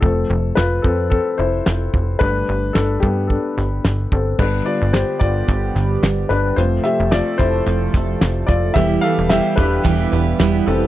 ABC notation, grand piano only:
X:1
M:4/4
L:1/8
Q:"Swing 16ths" 1/4=110
K:Gmix
V:1 name="Grand piano"
A2 [FB] [CA] [CA] [Ec]2 z | B2 [DA] [B,G] [DA]3 [CA] | [DB] [Fd] [Gc] [Fd]4 [DB] | [Fc] [Ge] [Fd] [Ec]4 [Fd] |
[Ge] [Af] [Ge] [DB]3 z [CA] |]
V:2 name="Grand piano"
[F,A,C]3 z4 z | [G,A,D] z6 z | [D,G,B,]3 z4 z | [F,A,C]8 |
[E,G,B,]3 z4 z |]